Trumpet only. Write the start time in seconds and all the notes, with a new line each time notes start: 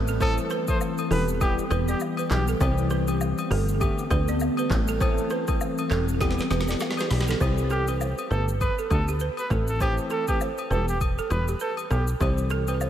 0.21 A4
0.69 C5
1.12 B4
1.41 G4
1.89 G4
2.31 G4
7.71 G4
8.31 A4
8.61 B4
8.91 A4
9.39 B4
9.69 A4
9.81 G4
10.11 A4
10.29 G4
10.71 A4
10.89 G4
11.31 B4
11.61 A4
11.91 G4